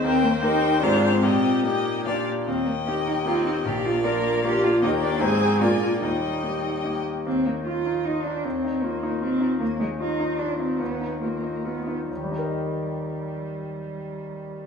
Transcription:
<<
  \new Staff \with { instrumentName = "Violin" } { \time 3/4 \key ees \major \tempo 4 = 149 g''4 g''4 f''4 | g''4 g''4 f''8 r8 | g''2. | f''2. |
g''4 aes''4 aes''4 | g''2~ g''8 r8 | r2. | r2. |
r2. | r2. | r2. | r2. | }
  \new Staff \with { instrumentName = "Violin" } { \time 3/4 \key ees \major bes'4 bes'4 c''4 | ees''4 ees''4 d''8 r8 | ees''2. | d''2. |
ees''8 d''8 c''4 d''4 | ees''2~ ees''8 r8 | r2. | r2. |
r2. | r2. | r2. | r2. | }
  \new Staff \with { instrumentName = "Grand piano" } { \time 3/4 \key ees \major ees,4 <ees' g' bes'>4 <aes, c' f' aes'>4 | bes,4 <bes ees' g'>4 <bes, bes d' f'>4 | ees,4 <bes ees' g'>4 <bes ees' g'>4 | bes,,4 <bes d' f'>4 <bes d' f'>4 |
<ees, bes ees' g'>4 <aes, c' ees' aes'>4 <bes, bes d' aes'>4 | ees,4 <bes ees' g'>4 <bes ees' g'>4 | ees,8 ees'8 f'8 ees'8 f'8 ees'8 | ees,8 ees'8 f'8 ees'8 f'8 ees'8 |
ees,8 ees'8 f'8 ees'8 f'8 ees'8 | ees,8 ees'8 f'8 ees'8 f'8 ees'8 | <ees, ees g ees' bes' ees''>2.~ | <ees, ees g ees' bes' ees''>2. | }
  \new Staff \with { instrumentName = "Cello" } { \time 3/4 \key ees \major c'8 bes8 ees'4 d'8. c'16 | c'4 bes4. r8 | c'8 bes8 g'8 ees'8 f'8 ees'8 | g'8 f'8 bes'4 g'8 f'8 |
ees'8 d'8 aes'4 f'4 | ees'2 r4 | c'8 bes8 f'4 ees'8 d'8 | c'4 bes4 c'4 |
bes8 aes8 ees'4 d'8 c'8 | ces'4 bes4 ces'4 | g2.~ | g2. | }
  \new Staff \with { instrumentName = "Viola" } { \time 3/4 \key ees \major c''2. | g'2~ g'8 r8 | r4 bes4 c'4 | bes2. |
bes4 c'4 bes4 | g2~ g8 r8 | r2. | r2. |
r2. | r2. | r2. | r2. | }
>>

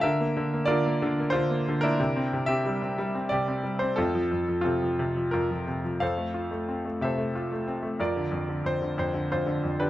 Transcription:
<<
  \new Staff \with { instrumentName = "Grand piano" } { \time 3/4 \key f \major \tempo 4 = 91 << { e''4 d''4 c''8. bes'16~ | bes'8. e''4~ e''16 d''8. c''16 | a'4 f'4 bes'4 | f''4. e''4 r8 |
d''4 c''8 c''8 c''8. b'16 | } \\ { bes'4 <f' bes'>4 f'8. <d' e'>16~ | <d' e'>8. g'4~ g'16 g'4 | <c' f'>4 <c' a'>4 f'4 | <a' c''>4. <a' c''>4. |
<f' bes'>4. r8 f'8. <d' g'>16 | } >> }
  \new Staff \with { instrumentName = "Grand piano" } { \clef bass \time 3/4 \key f \major d16 bes16 d16 bes16 d16 bes16 d16 bes16 d16 bes16 d16 bes16 | c16 c'16 c16 c'16 g16 c'16 g16 c'16 c16 c'16 g16 c'16 | f,16 f16 f,16 f16 c16 f16 c16 f16 f,16 f16 c16 f16 | f,16 a16 f'16 a16 c'16 a16 c16 a16 f'16 a16 c'16 a16 |
f,16 d16 f,16 d16 f,16 d16 f,16 d16 f,16 d16 f,16 d16 | }
>>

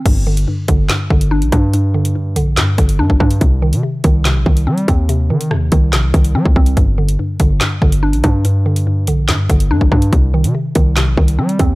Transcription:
<<
  \new Staff \with { instrumentName = "Synth pluck" } { \clef bass \time 4/4 \key g \minor \tempo 4 = 143 g,8 d8 g,8 d8 g,8 d8 d'8 d'8 | g,8 d8 g,8 d8 g,8 d8 d'8 d'8 | c8 ees8 c8 ees8 c8 ees8 c'8 c'8 | c8 ees8 c8 ees8 c8 ees8 c'8 c'8 |
g,8 d8 g,8 d8 g,8 d8 d'8 d'8 | g,8 d8 g,8 d8 g,8 d8 d'8 d'8 | c8 ees8 c8 ees8 c8 ees8 c'8 c'8 | }
  \new Staff \with { instrumentName = "808-style bass" } { \clef bass \time 4/4 \key g \minor g,,4 r8 g,,8 r8 g,,8. bes,,16 g,8~ | g,4. bes,,8 g,8 g,,8 g,16 g,,16 g,8 | c,8. c16 r8 c,8. bes,,16 c,8 g8 ees,8~ | ees,8 ees8 ees,8 c,8 bes,,16 c,16 c,8 g16 c,16 c,8 |
g,,4 r8 g,,8 r8 g,,8. bes,,16 g,8~ | g,4. bes,,8 g,8 g,,8 g,16 g,,16 g,8 | c,8. c16 r8 c,8. bes,,16 c,8 g8 ees,8 | }
  \new DrumStaff \with { instrumentName = "Drums" } \drummode { \time 4/4 <cymc hh bd>8. hh16 r8 <hh bd>8 <hc hh sn>8 bd16 hh16 r16 hh16 <hh bd>8 | hh8. hh16 r8 hh8 <hc hh sn>8 <hh bd>16 hh16 r16 bd16 bd16 hh16 | <hh bd>8. hh16 r8 <hh bd>8 <hc hh sn>8 bd16 hh16 r16 hh16 <hh bd>8 | hh8. hh16 ss8 <hh bd>8 <hc hh sn>8 <hh bd>16 hh16 r16 bd16 bd16 hh16 |
<hh bd>8. hh16 r8 <hh bd>8 <hc hh sn>8 bd16 hh16 r16 hh16 <hh bd>8 | hh8. hh16 r8 hh8 <hc hh sn>8 <hh bd>16 hh16 r16 bd16 bd16 hh16 | <hh bd>8. hh16 r8 <hh bd>8 <hc hh sn>8 bd16 hh16 r16 hh16 <hh bd>8 | }
>>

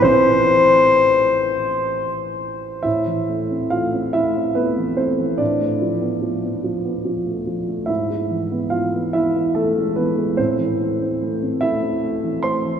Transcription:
<<
  \new Staff \with { instrumentName = "Alto saxophone" } { \time 6/8 \key a \minor \tempo 4. = 48 c''2~ c''16 r8. | r2. | r2. | r2. |
r2. | }
  \new Staff \with { instrumentName = "Grand piano" } { \time 6/8 \key a \minor <c' c''>4. r4. | <e' e''>4 <f' f''>8 <e' e''>8 <b b'>8 <c' c''>8 | <d' d''>2~ <d' d''>8 r8 | <e' e''>4 <f' f''>8 <e' e''>8 <a a'>8 <b b'>8 |
<c' c''>4. <e' e''>4 <c'' c'''>8 | }
  \new Staff \with { instrumentName = "Grand piano" } { \clef bass \time 6/8 \key a \minor <a,, a, e e'>2. | a,16 e16 a16 c'16 a16 c'16 a16 c'16 a16 e16 a16 e16 | a,16 a16 f16 b16 f16 b16 f16 b16 f16 a16 f16 a16 | gis,16 gis16 e16 b16 e16 b16 e16 b16 e16 gis16 e16 gis16 |
a,16 e16 a16 c'16 a16 c'16 a16 c'16 a16 e16 a16 e16 | }
>>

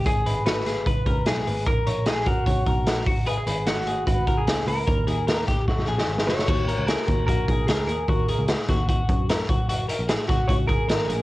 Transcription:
<<
  \new Staff \with { instrumentName = "Clean electric guitar" } { \time 4/4 \key gis \minor \tempo 4 = 150 gis'4 b'4 b'4 gis'4 | ais'4 gis'8 fis'2 r8 | b'16 gis'8. fis'4 fis'8. gis'8. ais'8~ | ais'4. r2 cis''8~ |
cis''4 ais'4 ais'4 gis'8 ais'8~ | ais'4 r2. | r4 gis'8 fis'8 cis''8 ais'4. | }
  \new Staff \with { instrumentName = "Clean electric guitar" } { \time 4/4 \key gis \minor gis'8 b'8 fis'8 gis'8 b'8 ais'8 gis'8 b'8 | ais'8 cis''8 gis'8 ais'8 cis''8 ais'4 fis'8 | gis'8 b'8 fis'8 gis'8 b'8 ais'8 gis'8 b'8 | ais'8 gis'8 ais'8 g'8 fis'8 gis'4 fis'8 |
fis'8 ais'8 gis'8 fis'8 fis'8 gis'8 ais'8 gis'8 | fis'8 gis'4 fis'8 fis'4 ais'8 fis'8 | fis'8 ais'8 gis'8 fis'8 fis'8 gis'8 ais'8 gis'8 | }
  \new Staff \with { instrumentName = "Picked electric bass" } { \clef bass \time 4/4 \key gis \minor gis,,8 gis,,4. fis,,8 cis,8 b,,8 gis,,8 | ais,,8 ais,,4. cis,8 b,,8 ais,,8 gis,,8~ | gis,,8 gis,,4. gis,,8 fis,,8 cis,8 cis,8 | dis,8 dis,4. fis,,8 ais,,8 gis,,8 fis,,8 |
dis,8. cis,8 r16 dis,8 ais,,8 b,,8 cis,8 dis,8 | dis,8. cis,8 r16 dis,4 fis,4 fis,,8~ | fis,,8. ais,,8 r16 fis,,8 cis,8 fis,,8 gis,,8 ais,,8 | }
  \new DrumStaff \with { instrumentName = "Drums" } \drummode { \time 4/4 <hh bd>8 hh8 <hh sn>8 <hh sn>8 <hh bd>8 <hh bd>8 <hh sn>8 hho8 | <hh bd>8 hh8 <hh sn>8 <hh bd>8 <hh bd>8 <hh bd>8 <hh sn>8 <hho bd>8 | hh8 hh8 <hh sn>8 hh8 <hh bd>8 <hh bd>8 <hh sn>8 hho8 | <hh bd>8 hh8 <hh sn>8 <hh bd sn>8 <bd sn>16 sn8 sn16 r16 sn16 sn16 sn16 |
<cymc bd>8 hh8 <hh sn>8 <hh bd>8 <hh bd>8 <hh bd>8 <hh sn>8 hh8 | <hh bd>8 hh8 <hh sn>8 <hh bd sn>8 <hh bd>8 <hh bd>8 <hh sn>8 <hh bd>8 | hh8 hh8 <hh sn>8 <hh bd sn>8 <hh bd>8 <hh bd>8 <hh sn>8 hh8 | }
>>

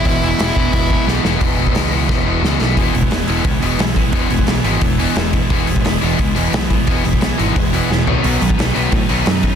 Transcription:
<<
  \new Staff \with { instrumentName = "Lead electric guitar" } { \time 4/4 \key e \major \tempo 4 = 176 <e' e''>2. r4 | r1 | r1 | r1 |
r1 | r1 | r1 | }
  \new Staff \with { instrumentName = "Overdriven electric guitar" } { \time 4/4 \key e \major <e gis b e'>8 <e gis b e'>8 <e gis b e'>8 <e gis b e'>8 <e gis b e'>8 <e gis b e'>8 <e gis b e'>8 <e gis b e'>8 | r1 | <e gis b e'>8 <e gis b e'>8 <e gis b e'>8 <e gis b e'>8 <e gis b e'>8 <e gis b e'>8 <e gis b e'>8 <e gis b e'>8 | <e gis b e'>8 <e gis b e'>8 <e gis b e'>8 <e gis b e'>8 <e gis b e'>8 <e gis b e'>8 <e gis b e'>8 <e gis b e'>8 |
<e gis b e'>8 <e gis b e'>8 <e gis b e'>8 <e gis b e'>8 <e gis b e'>8 <e gis b e'>8 <e gis b e'>8 <e gis b e'>8 | <e gis b e'>8 <e gis b e'>8 <e gis b e'>8 <e gis b e'>8 <e gis b e'>8 <e gis b e'>8 <e gis b e'>8 <b, dis fis b dis' b'>8 | <b, dis fis b dis' b'>8 <b, dis fis b dis' b'>8 <b, dis fis b dis' b'>8 <b, dis fis b dis' b'>8 <b, dis fis b dis' b'>8 <b, dis fis b dis' b'>8 <b, dis fis b dis' b'>8 <b, dis fis b dis' b'>8 | }
  \new Staff \with { instrumentName = "Overdriven electric guitar" } { \clef bass \time 4/4 \key e \major <e gis b e'>8 <e gis b e'>8 <e gis b e'>8 <e gis b e'>8 <e gis b e'>8 <e gis b e'>8 <e gis b e'>8 <e gis b e'>8 | <e gis b e'>8 <e gis b e'>8 <e gis b e'>8 <e gis b e'>8 <e gis b e'>8 <e gis b e'>8 <e gis b e'>8 <e gis b e'>8 | <e gis b>8 <e gis>8 <e gis>8 <e gis b>8 <e gis>8 <e gis b>8 <e gis>8 <e gis>8 | <e gis b>8 <e gis>8 <e gis>8 <e gis b>8 <e gis>8 <e gis b>8 <e gis>8 <e gis>8 |
<e gis b>8 <e gis>8 <e gis>8 <e gis b>8 <e gis>8 <e gis b>8 <e gis>8 <e gis>8 | <e gis b>8 <e gis>8 <e gis>8 <e gis b>8 <e gis>8 <e gis b>8 <e gis>8 <b, dis fis>8 | <b, dis fis>8 <b, dis>8 <b, dis>8 <b, dis fis>8 <b, dis>8 <b, dis fis>8 <b, dis>8 <b, dis>8 | }
  \new Staff \with { instrumentName = "Distorted electric guitar" } { \clef bass \time 4/4 \key e \major <e, b, e>8 <e, b, e>8 <e, b, e>8 <e, b, e>8 <e, b, e>8 <e, b, e>8 <e, b, e>8 <e, b, e>8 | <e, b, e>8 <e, b, e>8 <e, b, e>8 <e, b, e>8 <e, b, e>8 <e, b, e>8 <e, b, e>8 <e, b, e>8 | <e, b, e>8 <e, b,>8 <e, b,>8 <e, b, e>8 <e, b,>8 <e, b, e>8 <e, b,>8 <e, b,>8 | <e, b, e>8 <e, b,>8 <e, b,>8 <e, b, e>8 <e, b,>8 <e, b, e>8 <e, b,>8 <e, b,>8 |
<e, b, e>8 <e, b,>8 <e, b,>8 <e, b, e>8 <e, b,>8 <e, b, e>8 <e, b,>8 <e, b,>8 | <e, b, e>8 <e, b,>8 <e, b,>8 <e, b, e>8 <e, b,>8 <e, b, e>8 <e, b,>8 <b, fis b>8 | <b, fis b>8 <b, fis>8 <b, fis>8 <b, fis b>8 <b, fis>8 <b, fis b>8 <b, fis>8 <b, fis>8 | }
  \new Staff \with { instrumentName = "Picked electric bass" } { \clef bass \time 4/4 \key e \major e,,8 e,,8 e,,8 e,,8 e,,4 b,,8 e,,8 | e,,8 e,,8 cis,4 e,,8 e,,8 cis,8 b,,8 | e,,8 e,,8 e,,8 e,,8 cis,8 e,,8 b,,4 | e,,8 e,,8 b,,8 gis,,8 e,,4 e,,4 |
e,,8 e,,8 e,,8 e,,8 cis,8 e,,8 b,,4 | e,,8 e,,8 b,,8 gis,,8 e,,4 e,,8 b,,8 | b,,8 b,,8 b,,8 b,,8 a,8 b,,8 fis,4 | }
  \new DrumStaff \with { instrumentName = "Drums" } \drummode { \time 4/4 <hho bd>4 <hho sn>8 bd8 <hho bd>8 bd8 sn8 sn8 | <hho bd>8. bd16 <hho sn>4 <bd sn>4 sn8 sn8 | <hho bd>8 hho16 bd16 <hho sn>8 hho8 <hho bd>8 hho8 <hho sn>8 <hho bd>8 | <hho bd>8 hho16 bd16 <hho sn>8 hho8 <hho bd>8 hho8 <hho sn>8 <hho bd>8 |
<hho bd>8 hho16 bd16 <hho sn>8 hho8 <hho bd>8 hho8 <hho sn>8 <hho bd>8 | <hho bd>8 hho16 bd16 <hho sn>8 hho8 <hho bd>8 hho8 sn8 tomfh8 | hho8 hho16 bd16 <hho sn>8 hho8 <hho bd>8 hho8 <hho sn>8 <hho bd>8 | }
>>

